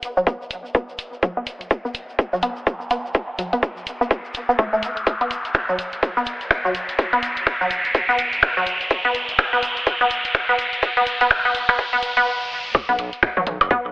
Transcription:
Already playing: riser
0.03 closed hi-hat, shaker
0.17 F#3, shaker
0.27 B3, kick, shaker
0.42 shaker
0.51 closed hi-hat, shaker
0.65 shaker
0.75 B3, kick, shaker
0.89 shaker
0.99 closed hi-hat, shaker
1.13 shaker
1.23 F#3, kick, shaker
1.37 B3
1.47 closed hi-hat, shaker
1.61 closed hi-hat, shaker
1.70 kick, shaker
1.85 B3, shaker
1.95 closed hi-hat, shaker
2.09 shaker
2.19 kick, shaker
2.33 F#3, shaker
2.42 B3, closed hi-hat, shaker
2.56 shaker
2.67 kick, shaker
2.81 shaker
2.91 B3, closed hi-hat, shaker
3.06 shaker
3.14 kick, shaker
3.39 F#3, closed hi-hat, shaker
3.53 B3, closed hi-hat, shaker
3.63 kick, shaker
3.77 shaker
3.87 closed hi-hat, shaker
4.01 B3, shaker
4.11 kick, shaker
4.25 shaker
4.34 closed hi-hat, shaker
4.49 B3, shaker
4.59 A3, kick, shaker
4.73 A3, shaker
4.83 closed hi-hat, shaker
4.97 closed hi-hat, shaker
5.07 kick, closed hi-hat, shaker
5.21 B3, closed hi-hat
5.31 closed hi-hat, shaker
5.45 closed hi-hat, shaker
5.54 finger snap, kick, closed hi-hat, shaker
5.69 F#3, shaker
5.79 closed hi-hat, shaker
5.92 closed hi-hat, shaker
6.03 kick, closed hi-hat, shaker
6.17 B3, shaker
6.26 closed hi-hat, shaker
6.41 closed hi-hat, shaker
6.51 finger snap, kick, closed hi-hat, shaker
6.65 F#3, shaker
6.75 closed hi-hat, shaker
6.89 closed hi-hat, shaker
6.99 kick, closed hi-hat, shaker
7.13 B3, closed hi-hat
7.23 closed hi-hat, shaker
7.36 closed hi-hat, shaker
7.47 finger snap, kick, closed hi-hat, shaker
7.61 F#3, shaker
7.71 closed hi-hat, shaker
7.85 closed hi-hat, shaker
7.95 kick, closed hi-hat, shaker
8.09 B3, shaker
8.18 closed hi-hat, shaker
8.33 closed hi-hat, shaker
8.42 finger snap, kick, closed hi-hat, shaker
8.57 F#3, shaker
8.66 closed hi-hat, shaker
8.81 closed hi-hat, shaker
8.91 kick, closed hi-hat, shaker
9.05 B3, closed hi-hat
9.15 closed hi-hat, shaker
9.29 closed hi-hat, shaker
9.39 finger snap, kick, closed hi-hat, shaker
9.53 B3, shaker
9.63 closed hi-hat, shaker
9.76 closed hi-hat, shaker
9.87 kick, closed hi-hat, shaker
10.01 B3, shaker
10.11 closed hi-hat, shaker
10.25 closed hi-hat, shaker
10.35 finger snap, kick, closed hi-hat, shaker
10.49 B3, shaker
10.59 closed hi-hat, shaker
10.73 closed hi-hat, shaker
10.83 kick, closed hi-hat, shaker
10.97 B3, closed hi-hat, shaker
11.06 closed hi-hat, shaker
11.21 B3, closed hi-hat, shaker
11.30 finger snap, kick, closed hi-hat, shaker
11.45 B3, closed hi-hat, shaker
11.55 closed hi-hat, shaker
11.69 B3, finger snap, closed hi-hat, shaker
11.79 kick, closed hi-hat, shaker
11.93 B3, closed hi-hat, shaker
12.02 closed hi-hat, shaker
12.17 B3, closed hi-hat, shaker
12.75 kick, closed hi-hat, percussion blips
12.89 B1 B3, closed hi-hat
12.99 B1, closed hi-hat
13.13 closed hi-hat
13.23 finger snap, kick, closed hi-hat, percussion blips
13.37 F#3, mid tom
13.47 B1, closed hi-hat, mid tom
13.61 F#1, closed hi-hat, percussion blips
13.71 B3, kick, closed hi-hat
13.85 B1

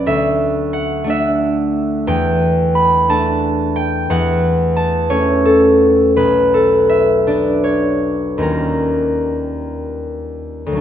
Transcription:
Already playing: D5 F#5
0.06 D2 E5
0.73 F#5
1.04 A3 D4
1.10 E5
2.07 E2 G5
2.75 B5
3.09 A3 D4 A5
3.76 G5
4.10 E2 F#5
4.76 A5
5.10 A3 C#4 C#5
5.45 A4
6.16 B1 B4
6.54 A4
6.89 E5
7.27 B3 D4 D5
7.64 C#5
8.38 D#2 G3 C#4 F4
8.42 A#4
10.66 D2
10.72 F#3
10.77 D4

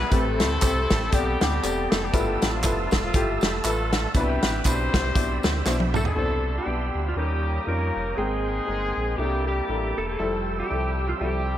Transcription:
Already playing: E5 G#5 E6
0.10 A1 A2 A3 C4 E4 G4 A4 B4 G5 A5, kick, closed hi-hat, tambourine
0.15 A4
0.40 D2, snare, closed hi-hat, tambourine
0.61 C2 A3 C4 G4 C5, kick, clap, closed hi-hat, tambourine
0.90 A1, kick, snare, closed hi-hat, tambourine
1.12 B1 C3 G3 A3 B3 C4 G4 D5, kick, closed hi-hat, tambourine
1.41 D2 G3 B3 C4 G4, snare, closed hi-hat, tambourine
1.62 E1 C3 A3 G4 D5, clap, closed hi-hat, tambourine
1.91 F1 A3 A4, snare, closed hi-hat, tambourine
2.03 G3 B3 D4 G4
2.12 G1 G2 A3 E4 F4 B4 E5 E6, kick, closed hi-hat, tambourine
2.42 A1, snare, closed hi-hat, tambourine
2.52 F3 F4
2.63 F1 A3 E4 F4 B4, kick, clap, closed hi-hat, tambourine
2.77 F3 F4
2.91 E1, kick, snare, closed hi-hat, tambourine
3.02 F3 A3 B3 F4
3.14 G1 A3 E4 F4 G4, kick, closed hi-hat, tambourine
3.41 F1, snare, closed hi-hat, tambourine
3.64 A1 A3 D4 F4 A4 B4 E5, clap, closed hi-hat, tambourine
3.93 snare, closed hi-hat, tambourine
4.14 C2 B2 C3 B3 D4 E4 G4 B4 D5 G5 B5, kick, closed hi-hat, tambourine
4.42 A1, snare, closed hi-hat, tambourine
4.64 B1 B2 C4 D4 E4 G4 C5 B5, kick, clap, closed hi-hat, tambourine
4.94 C2, kick, snare, closed hi-hat, tambourine
5.15 B1 B2 D4 E4 D5, kick, closed hi-hat, tambourine
5.43 D2, snare, closed hi-hat, tambourine
5.65 B1 B2 D4 E4 C5, snare, clap, tambourine
5.80 high tom
5.93 A3 A4, mid tom, tambourine
6.04 A3 D4 E4 A4, floor tom
6.16 C2 B2 C3 D4 E4 C5 D5 B5 C6 E6
6.55 G3 B3 E4 G4
6.66 B1 B3 D4 E4 G4
6.95 D2
7.04 F3 F4
7.09 F4
7.16 D#2 D#3 G3 A#3 C#4 D#4 G4 A#4 C#5 G5 A#5 D#6
7.65 F2 G3 A#3 C#4 D#4 F4 G4 A#4
7.96 F1
8.15 G#1 G#2 G#3 A#3 C4 D#4 G#4 A#4 G5 C6
8.67 G1 G#3 C4 A#4 G5
8.97 A#1
9.16 C2 C3 G3 A#3 D4 E4 G4 A4 A#4 E5 A5 D6
9.45 G3 A#3 E4 G4
9.69 A1 D4 E4 A4 A#4
9.97 E1 A3 A4
10.07 A3 C4 E4 A4
10.19 F1 F3 G3 E4 A4 E5 G5 E6
10.58 G3 C4 E4 G4
10.69 C2 F3 G3 E4 A4
11.07 F3 F4
11.18 C2 F3 G3 C4 E4 G4 A4

